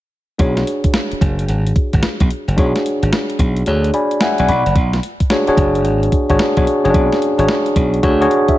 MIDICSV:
0, 0, Header, 1, 5, 480
1, 0, Start_track
1, 0, Tempo, 545455
1, 346, Time_signature, 4, 2, 24, 8
1, 7553, End_track
2, 0, Start_track
2, 0, Title_t, "Tine electric piano"
2, 0, Program_c, 0, 4
2, 338, Note_on_c, 0, 62, 64
2, 342, Note_on_c, 0, 66, 65
2, 350, Note_on_c, 0, 68, 62
2, 359, Note_on_c, 0, 73, 75
2, 535, Control_c, 0, 64, 127
2, 2227, Note_off_c, 0, 62, 0
2, 2229, Note_off_c, 0, 66, 0
2, 2233, Note_off_c, 0, 68, 0
2, 2237, Note_off_c, 0, 73, 0
2, 2258, Note_on_c, 0, 62, 73
2, 2264, Note_on_c, 0, 66, 66
2, 2274, Note_on_c, 0, 68, 68
2, 2281, Note_on_c, 0, 73, 71
2, 3203, Note_off_c, 0, 62, 0
2, 3206, Note_off_c, 0, 66, 0
2, 3211, Note_off_c, 0, 68, 0
2, 3214, Note_off_c, 0, 73, 0
2, 3226, Note_on_c, 0, 62, 55
2, 3228, Note_on_c, 0, 66, 49
2, 3234, Note_on_c, 0, 68, 50
2, 3236, Note_on_c, 0, 73, 66
2, 3467, Note_on_c, 0, 74, 64
2, 3467, Note_on_c, 0, 83, 57
2, 3471, Note_off_c, 0, 73, 0
2, 3472, Note_on_c, 0, 80, 54
2, 3689, Note_off_c, 0, 74, 0
2, 3694, Note_off_c, 0, 83, 0
2, 3697, Note_off_c, 0, 80, 0
2, 3712, Note_on_c, 0, 80, 63
2, 3713, Note_on_c, 0, 78, 65
2, 3718, Note_on_c, 0, 76, 52
2, 3854, Note_off_c, 0, 78, 0
2, 3856, Note_off_c, 0, 80, 0
2, 3860, Note_off_c, 0, 76, 0
2, 3869, Note_on_c, 0, 78, 62
2, 3872, Note_on_c, 0, 80, 65
2, 3876, Note_on_c, 0, 74, 52
2, 3945, Note_off_c, 0, 80, 0
2, 3946, Note_off_c, 0, 62, 0
2, 3947, Note_off_c, 0, 66, 0
2, 3949, Note_on_c, 0, 83, 71
2, 3950, Note_off_c, 0, 68, 0
2, 3958, Control_c, 0, 64, 0
2, 4051, Control_c, 0, 64, 127
2, 4093, Note_off_c, 0, 78, 0
2, 4097, Note_off_c, 0, 74, 0
2, 4170, Note_off_c, 0, 83, 0
2, 4196, Control_c, 0, 64, 0
2, 4345, Control_c, 0, 64, 127
2, 4664, Note_on_c, 0, 62, 86
2, 4667, Note_on_c, 0, 66, 77
2, 4671, Note_on_c, 0, 68, 75
2, 4673, Note_on_c, 0, 73, 93
2, 4777, Note_off_c, 0, 62, 0
2, 4779, Note_off_c, 0, 66, 0
2, 4781, Note_off_c, 0, 68, 0
2, 4782, Note_off_c, 0, 73, 0
2, 4820, Note_on_c, 0, 62, 86
2, 4820, Note_on_c, 0, 66, 80
2, 4825, Note_on_c, 0, 68, 80
2, 4828, Note_on_c, 0, 73, 98
2, 5330, Note_off_c, 0, 62, 0
2, 5330, Note_off_c, 0, 66, 0
2, 5332, Note_off_c, 0, 68, 0
2, 5334, Note_off_c, 0, 73, 0
2, 5538, Note_on_c, 0, 62, 82
2, 5541, Note_on_c, 0, 66, 70
2, 5547, Note_on_c, 0, 68, 72
2, 5549, Note_on_c, 0, 73, 94
2, 5694, Note_off_c, 0, 62, 0
2, 5695, Note_off_c, 0, 66, 0
2, 5698, Note_off_c, 0, 68, 0
2, 5699, Note_off_c, 0, 73, 0
2, 5781, Note_on_c, 0, 62, 72
2, 5784, Note_on_c, 0, 66, 70
2, 5788, Note_on_c, 0, 68, 72
2, 5790, Note_on_c, 0, 73, 80
2, 5935, Note_off_c, 0, 62, 0
2, 5937, Note_off_c, 0, 66, 0
2, 5939, Note_off_c, 0, 68, 0
2, 5940, Note_off_c, 0, 73, 0
2, 6017, Note_on_c, 0, 61, 62
2, 6021, Note_on_c, 0, 66, 75
2, 6024, Note_on_c, 0, 68, 76
2, 6026, Note_on_c, 0, 73, 91
2, 6059, Note_off_c, 0, 61, 0
2, 6073, Note_on_c, 0, 62, 84
2, 6337, Note_off_c, 0, 66, 0
2, 6338, Note_off_c, 0, 68, 0
2, 6339, Note_off_c, 0, 73, 0
2, 6363, Note_off_c, 0, 62, 0
2, 6497, Note_on_c, 0, 62, 74
2, 6502, Note_on_c, 0, 66, 69
2, 6505, Note_on_c, 0, 68, 69
2, 6508, Note_on_c, 0, 73, 87
2, 6920, Note_off_c, 0, 62, 0
2, 6922, Note_off_c, 0, 66, 0
2, 6924, Note_off_c, 0, 68, 0
2, 6925, Note_off_c, 0, 73, 0
2, 7066, Note_on_c, 0, 62, 86
2, 7067, Note_on_c, 0, 66, 84
2, 7073, Note_on_c, 0, 68, 81
2, 7077, Note_on_c, 0, 73, 92
2, 7178, Note_off_c, 0, 62, 0
2, 7179, Note_off_c, 0, 66, 0
2, 7182, Note_off_c, 0, 68, 0
2, 7184, Note_off_c, 0, 73, 0
2, 7223, Note_on_c, 0, 62, 92
2, 7225, Note_on_c, 0, 66, 93
2, 7231, Note_on_c, 0, 68, 85
2, 7234, Note_on_c, 0, 73, 103
2, 7312, Note_off_c, 0, 73, 0
2, 7470, Note_on_c, 0, 76, 61
2, 7473, Note_on_c, 0, 73, 52
2, 7546, Note_off_c, 0, 76, 0
2, 7548, Note_off_c, 0, 73, 0
2, 7553, Note_off_c, 0, 62, 0
2, 7553, Note_off_c, 0, 66, 0
2, 7553, Note_off_c, 0, 68, 0
2, 7553, End_track
3, 0, Start_track
3, 0, Title_t, "Slap bass"
3, 0, Program_c, 1, 36
3, 348, Note_on_c, 1, 35, 97
3, 547, Note_off_c, 1, 35, 0
3, 1069, Note_on_c, 1, 30, 89
3, 1267, Note_off_c, 1, 30, 0
3, 1311, Note_on_c, 1, 32, 91
3, 1508, Note_off_c, 1, 32, 0
3, 1705, Note_on_c, 1, 32, 77
3, 1774, Note_off_c, 1, 32, 0
3, 1943, Note_on_c, 1, 35, 82
3, 2012, Note_off_c, 1, 35, 0
3, 2180, Note_on_c, 1, 30, 76
3, 2251, Note_off_c, 1, 30, 0
3, 2270, Note_on_c, 1, 35, 110
3, 2397, Note_off_c, 1, 35, 0
3, 2661, Note_on_c, 1, 32, 81
3, 2732, Note_off_c, 1, 32, 0
3, 2985, Note_on_c, 1, 35, 84
3, 3185, Note_off_c, 1, 35, 0
3, 3231, Note_on_c, 1, 38, 86
3, 3428, Note_off_c, 1, 38, 0
3, 3866, Note_on_c, 1, 35, 82
3, 3934, Note_off_c, 1, 35, 0
3, 3945, Note_on_c, 1, 35, 85
3, 4075, Note_off_c, 1, 35, 0
3, 4100, Note_on_c, 1, 30, 90
3, 4171, Note_off_c, 1, 30, 0
3, 4188, Note_on_c, 1, 35, 96
3, 4387, Note_off_c, 1, 35, 0
3, 4906, Note_on_c, 1, 30, 83
3, 5145, Note_off_c, 1, 30, 0
3, 5145, Note_on_c, 1, 32, 86
3, 5345, Note_off_c, 1, 32, 0
3, 5541, Note_on_c, 1, 32, 71
3, 5611, Note_off_c, 1, 32, 0
3, 5782, Note_on_c, 1, 35, 81
3, 5852, Note_off_c, 1, 35, 0
3, 6027, Note_on_c, 1, 30, 87
3, 6095, Note_off_c, 1, 30, 0
3, 6108, Note_on_c, 1, 35, 106
3, 6236, Note_off_c, 1, 35, 0
3, 6498, Note_on_c, 1, 32, 80
3, 6570, Note_off_c, 1, 32, 0
3, 6831, Note_on_c, 1, 35, 86
3, 7028, Note_off_c, 1, 35, 0
3, 7069, Note_on_c, 1, 38, 94
3, 7267, Note_off_c, 1, 38, 0
3, 7553, End_track
4, 0, Start_track
4, 0, Title_t, "Muted slap bass strokes"
4, 743, Note_on_c, 9, 29, 39
4, 831, Note_off_c, 9, 29, 0
4, 989, Note_on_c, 9, 29, 45
4, 1077, Note_off_c, 9, 29, 0
4, 1789, Note_on_c, 9, 29, 50
4, 1877, Note_off_c, 9, 29, 0
4, 4578, Note_on_c, 9, 29, 45
4, 4666, Note_off_c, 9, 29, 0
4, 4824, Note_on_c, 9, 29, 44
4, 4912, Note_off_c, 9, 29, 0
4, 5624, Note_on_c, 9, 29, 51
4, 5712, Note_off_c, 9, 29, 0
4, 7553, End_track
5, 0, Start_track
5, 0, Title_t, "Drums"
5, 345, Note_on_c, 9, 42, 75
5, 346, Note_on_c, 9, 36, 107
5, 433, Note_off_c, 9, 42, 0
5, 434, Note_off_c, 9, 36, 0
5, 501, Note_on_c, 9, 42, 48
5, 502, Note_on_c, 9, 38, 59
5, 589, Note_off_c, 9, 42, 0
5, 590, Note_off_c, 9, 38, 0
5, 593, Note_on_c, 9, 42, 68
5, 681, Note_off_c, 9, 42, 0
5, 739, Note_on_c, 9, 42, 63
5, 741, Note_on_c, 9, 36, 83
5, 824, Note_off_c, 9, 42, 0
5, 824, Note_on_c, 9, 38, 114
5, 824, Note_on_c, 9, 42, 65
5, 829, Note_off_c, 9, 36, 0
5, 912, Note_off_c, 9, 38, 0
5, 912, Note_off_c, 9, 42, 0
5, 982, Note_on_c, 9, 42, 52
5, 1067, Note_on_c, 9, 36, 96
5, 1070, Note_off_c, 9, 42, 0
5, 1071, Note_on_c, 9, 42, 72
5, 1155, Note_off_c, 9, 36, 0
5, 1159, Note_off_c, 9, 42, 0
5, 1223, Note_on_c, 9, 42, 53
5, 1307, Note_off_c, 9, 42, 0
5, 1307, Note_on_c, 9, 42, 71
5, 1395, Note_off_c, 9, 42, 0
5, 1466, Note_on_c, 9, 42, 54
5, 1547, Note_off_c, 9, 42, 0
5, 1547, Note_on_c, 9, 36, 89
5, 1547, Note_on_c, 9, 42, 62
5, 1635, Note_off_c, 9, 36, 0
5, 1635, Note_off_c, 9, 42, 0
5, 1700, Note_on_c, 9, 42, 50
5, 1702, Note_on_c, 9, 36, 81
5, 1783, Note_on_c, 9, 38, 94
5, 1786, Note_off_c, 9, 42, 0
5, 1786, Note_on_c, 9, 42, 69
5, 1790, Note_off_c, 9, 36, 0
5, 1871, Note_off_c, 9, 38, 0
5, 1874, Note_off_c, 9, 42, 0
5, 1938, Note_on_c, 9, 42, 52
5, 1940, Note_on_c, 9, 36, 109
5, 2026, Note_off_c, 9, 42, 0
5, 2028, Note_off_c, 9, 36, 0
5, 2029, Note_on_c, 9, 42, 71
5, 2117, Note_off_c, 9, 42, 0
5, 2187, Note_on_c, 9, 42, 50
5, 2268, Note_on_c, 9, 36, 114
5, 2269, Note_off_c, 9, 42, 0
5, 2269, Note_on_c, 9, 42, 76
5, 2356, Note_off_c, 9, 36, 0
5, 2357, Note_off_c, 9, 42, 0
5, 2425, Note_on_c, 9, 42, 50
5, 2426, Note_on_c, 9, 38, 60
5, 2513, Note_off_c, 9, 42, 0
5, 2514, Note_off_c, 9, 38, 0
5, 2516, Note_on_c, 9, 42, 70
5, 2604, Note_off_c, 9, 42, 0
5, 2664, Note_on_c, 9, 42, 61
5, 2751, Note_off_c, 9, 42, 0
5, 2751, Note_on_c, 9, 38, 102
5, 2751, Note_on_c, 9, 42, 68
5, 2839, Note_off_c, 9, 38, 0
5, 2839, Note_off_c, 9, 42, 0
5, 2901, Note_on_c, 9, 42, 52
5, 2984, Note_on_c, 9, 36, 91
5, 2987, Note_off_c, 9, 42, 0
5, 2987, Note_on_c, 9, 42, 74
5, 3072, Note_off_c, 9, 36, 0
5, 3075, Note_off_c, 9, 42, 0
5, 3138, Note_on_c, 9, 42, 52
5, 3223, Note_off_c, 9, 42, 0
5, 3223, Note_on_c, 9, 42, 71
5, 3311, Note_off_c, 9, 42, 0
5, 3382, Note_on_c, 9, 42, 53
5, 3465, Note_off_c, 9, 42, 0
5, 3465, Note_on_c, 9, 42, 67
5, 3553, Note_off_c, 9, 42, 0
5, 3618, Note_on_c, 9, 42, 51
5, 3701, Note_on_c, 9, 38, 107
5, 3704, Note_off_c, 9, 42, 0
5, 3704, Note_on_c, 9, 42, 68
5, 3789, Note_off_c, 9, 38, 0
5, 3792, Note_off_c, 9, 42, 0
5, 3856, Note_on_c, 9, 42, 57
5, 3944, Note_off_c, 9, 42, 0
5, 3947, Note_on_c, 9, 42, 74
5, 4035, Note_off_c, 9, 42, 0
5, 4103, Note_on_c, 9, 42, 51
5, 4185, Note_off_c, 9, 42, 0
5, 4185, Note_on_c, 9, 36, 116
5, 4185, Note_on_c, 9, 42, 72
5, 4273, Note_off_c, 9, 36, 0
5, 4273, Note_off_c, 9, 42, 0
5, 4342, Note_on_c, 9, 38, 60
5, 4342, Note_on_c, 9, 42, 47
5, 4429, Note_off_c, 9, 42, 0
5, 4429, Note_on_c, 9, 42, 70
5, 4430, Note_off_c, 9, 38, 0
5, 4517, Note_off_c, 9, 42, 0
5, 4578, Note_on_c, 9, 42, 60
5, 4579, Note_on_c, 9, 36, 83
5, 4664, Note_off_c, 9, 42, 0
5, 4664, Note_on_c, 9, 42, 61
5, 4665, Note_on_c, 9, 38, 108
5, 4667, Note_off_c, 9, 36, 0
5, 4752, Note_off_c, 9, 42, 0
5, 4753, Note_off_c, 9, 38, 0
5, 4817, Note_on_c, 9, 42, 53
5, 4904, Note_on_c, 9, 36, 94
5, 4905, Note_off_c, 9, 42, 0
5, 4907, Note_on_c, 9, 42, 73
5, 4992, Note_off_c, 9, 36, 0
5, 4995, Note_off_c, 9, 42, 0
5, 5063, Note_on_c, 9, 42, 49
5, 5145, Note_off_c, 9, 42, 0
5, 5145, Note_on_c, 9, 42, 67
5, 5233, Note_off_c, 9, 42, 0
5, 5306, Note_on_c, 9, 42, 50
5, 5387, Note_off_c, 9, 42, 0
5, 5387, Note_on_c, 9, 36, 82
5, 5387, Note_on_c, 9, 42, 61
5, 5475, Note_off_c, 9, 36, 0
5, 5475, Note_off_c, 9, 42, 0
5, 5540, Note_on_c, 9, 42, 52
5, 5542, Note_on_c, 9, 36, 74
5, 5626, Note_on_c, 9, 38, 112
5, 5628, Note_off_c, 9, 42, 0
5, 5628, Note_on_c, 9, 42, 64
5, 5630, Note_off_c, 9, 36, 0
5, 5714, Note_off_c, 9, 38, 0
5, 5716, Note_off_c, 9, 42, 0
5, 5780, Note_on_c, 9, 42, 55
5, 5782, Note_on_c, 9, 36, 111
5, 5868, Note_off_c, 9, 42, 0
5, 5870, Note_off_c, 9, 36, 0
5, 5872, Note_on_c, 9, 42, 73
5, 5960, Note_off_c, 9, 42, 0
5, 6030, Note_on_c, 9, 42, 48
5, 6109, Note_on_c, 9, 36, 110
5, 6110, Note_off_c, 9, 42, 0
5, 6110, Note_on_c, 9, 42, 75
5, 6197, Note_off_c, 9, 36, 0
5, 6198, Note_off_c, 9, 42, 0
5, 6269, Note_on_c, 9, 42, 50
5, 6270, Note_on_c, 9, 38, 60
5, 6354, Note_off_c, 9, 42, 0
5, 6354, Note_on_c, 9, 42, 69
5, 6358, Note_off_c, 9, 38, 0
5, 6442, Note_off_c, 9, 42, 0
5, 6503, Note_on_c, 9, 42, 59
5, 6587, Note_off_c, 9, 42, 0
5, 6587, Note_on_c, 9, 38, 114
5, 6587, Note_on_c, 9, 42, 65
5, 6675, Note_off_c, 9, 38, 0
5, 6675, Note_off_c, 9, 42, 0
5, 6741, Note_on_c, 9, 42, 53
5, 6828, Note_on_c, 9, 36, 88
5, 6829, Note_off_c, 9, 42, 0
5, 6829, Note_on_c, 9, 42, 76
5, 6916, Note_off_c, 9, 36, 0
5, 6917, Note_off_c, 9, 42, 0
5, 6985, Note_on_c, 9, 42, 48
5, 7068, Note_off_c, 9, 42, 0
5, 7068, Note_on_c, 9, 36, 96
5, 7068, Note_on_c, 9, 42, 73
5, 7156, Note_off_c, 9, 36, 0
5, 7156, Note_off_c, 9, 42, 0
5, 7232, Note_on_c, 9, 42, 54
5, 7313, Note_off_c, 9, 42, 0
5, 7313, Note_on_c, 9, 42, 65
5, 7401, Note_off_c, 9, 42, 0
5, 7465, Note_on_c, 9, 36, 79
5, 7467, Note_on_c, 9, 42, 53
5, 7553, Note_off_c, 9, 36, 0
5, 7553, Note_off_c, 9, 42, 0
5, 7553, End_track
0, 0, End_of_file